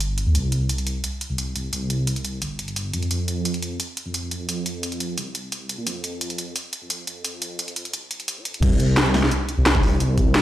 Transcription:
0.00 0.25 G1 medium
0.00 closed hi-hat medium
0.18 closed hi-hat medium
0.27 0.34 D#2 medium
0.35 1.02 C2 loud
0.35 closed hi-hat medium
0.52 closed hi-hat medium
0.69 closed hi-hat medium
0.78 closed hi-hat soft
0.87 closed hi-hat medium
1.04 closed hi-hat medium
1.21 closed hi-hat medium
1.30 1.54 C2 medium
1.38 closed hi-hat medium
1.55 1.71 C2 medium
1.55 closed hi-hat medium
1.73 2.40 C2 loud
1.73 closed hi-hat medium
1.90 closed hi-hat medium
2.07 closed hi-hat medium
2.16 closed hi-hat soft
2.25 closed hi-hat medium
2.42 2.76 G1 medium
2.42 closed hi-hat medium
2.59 closed hi-hat medium
2.68 closed hi-hat soft
2.76 2.92 G1 medium
2.76 closed hi-hat medium
2.93 3.09 F2 medium
2.93 closed hi-hat medium
3.03 closed hi-hat soft
3.11 3.78 F2 loud
3.11 closed hi-hat medium
3.28 closed hi-hat medium
3.45 closed hi-hat medium
3.54 closed hi-hat soft
3.62 closed hi-hat medium
3.80 closed hi-hat medium
3.97 closed hi-hat medium
4.06 4.30 F2 medium
4.14 closed hi-hat medium
4.31 4.47 F2 medium
4.31 closed hi-hat medium
4.49 5.16 F2 loud
4.49 closed hi-hat medium
4.66 closed hi-hat medium
4.83 closed hi-hat medium
4.92 closed hi-hat soft
5.00 closed hi-hat medium
5.18 5.77 C2 medium
5.18 closed hi-hat medium
5.35 closed hi-hat medium
5.52 closed hi-hat medium
5.69 closed hi-hat medium
5.78 5.86 A#2 medium
5.87 6.54 F2 loud
5.87 closed hi-hat loud
6.04 closed hi-hat medium
6.21 closed hi-hat medium
6.30 closed hi-hat soft
6.38 closed hi-hat medium
6.56 closed hi-hat medium
6.73 closed hi-hat medium
6.82 7.06 F2 medium
6.90 closed hi-hat loud
7.07 7.23 F2 loud
7.07 closed hi-hat medium
7.25 7.92 F2 medium
7.25 closed hi-hat loud
7.42 closed hi-hat medium
7.59 closed hi-hat loud
7.68 closed hi-hat soft
7.76 closed hi-hat medium
7.85 closed hi-hat soft
7.93 8.28 C2 medium
7.93 closed hi-hat loud
8.11 closed hi-hat medium
8.20 closed hi-hat soft
8.28 8.39 C2 loud
8.28 closed hi-hat loud
8.37 8.44 A#2 loud
8.45 8.61 F2 loud
8.45 closed hi-hat medium
8.54 closed hi-hat soft
8.63 9.30 C2 loud
8.63 kick loud
8.63 closed hi-hat loud
8.63 crash loud
8.80 closed hi-hat medium
8.97 snare loud
8.97 closed hi-hat medium
9.06 closed hi-hat soft
9.14 snare medium
9.14 open hi-hat medium
9.23 snare soft
9.31 closed hi-hat loud
9.49 closed hi-hat medium
9.58 9.82 C2 medium
9.66 snare loud
9.66 closed hi-hat loud
9.75 kick loud
9.75 snare soft
9.83 9.99 C2 loud
9.83 open hi-hat medium
10.00 10.42 C2 loud
10.00 closed hi-hat loud
10.18 kick medium
10.18 closed hi-hat medium
10.35 snare loud
10.35 closed hi-hat medium

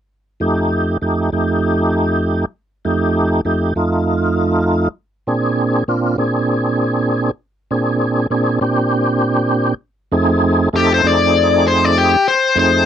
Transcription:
0.40 0.97 F2 medium
0.40 0.97 A3 medium
0.40 0.97 D#4 medium
0.40 0.98 G4 medium
1.02 1.30 F2 medium
1.02 1.30 A3 medium
1.02 1.30 D#4 medium
1.02 1.30 G4 medium
1.32 2.45 F2 medium
1.32 2.45 A3 medium
1.32 2.45 D#4 medium
1.32 2.45 G4 medium
2.85 3.41 F2 medium
2.85 3.41 A3 medium
2.85 3.41 D#4 medium
2.85 3.41 G4 medium
3.45 3.73 F2 medium
3.45 3.73 A3 medium
3.45 3.73 D#4 medium
3.45 3.74 G4 medium
3.76 4.88 F2 medium
3.76 4.88 A3 medium
3.76 4.89 D#4 medium
3.76 4.89 F4 medium
5.27 5.83 A#2 medium
5.27 5.84 C4 medium
5.27 5.84 D4 medium
5.27 5.84 G#4 medium
5.88 6.16 A#2 medium
5.88 6.16 C4 medium
5.88 6.16 D4 medium
5.88 6.17 F4 medium
6.18 7.31 A#2 medium
6.18 7.31 C4 medium
6.18 7.31 D4 medium
6.18 7.31 G#4 medium
7.71 8.27 A#2 medium
7.71 8.27 C4 medium
7.71 8.27 D4 medium
7.71 8.27 G#4 medium
8.30 8.59 A#2 medium
8.30 8.59 C4 medium
8.30 8.59 D4 medium
8.30 8.60 G#4 medium
8.61 9.74 A#2 medium
8.61 9.74 C4 medium
8.61 9.74 D4 medium
8.61 9.74 G4 medium
10.12 10.69 F2 medium
10.12 10.69 A3 medium
10.12 10.69 C4 medium
10.12 10.69 D#4 medium
10.12 10.69 G#4 medium
10.73 11.02 F2 medium
10.73 11.02 A3 medium
10.73 11.02 C4 medium
10.73 11.02 D#4 medium
10.73 10.91 G4 medium
10.73 11.02 A4 medium
10.94 11.05 C5 medium
11.03 12.16 F2 medium
11.03 12.16 A3 medium
11.03 12.17 C4 medium
11.03 12.17 D#4 medium
11.03 12.17 G#4 medium
11.03 11.64 D5 medium
11.68 11.85 C5 medium
11.85 11.96 D5 medium
11.98 12.26 G4 medium
12.28 12.56 C5 medium
12.55 12.86 F2 medium
12.55 12.86 A3 medium
12.55 12.86 C4 medium
12.55 12.86 D#4 medium
12.55 12.86 G#4 medium
12.59 12.86 C5 medium

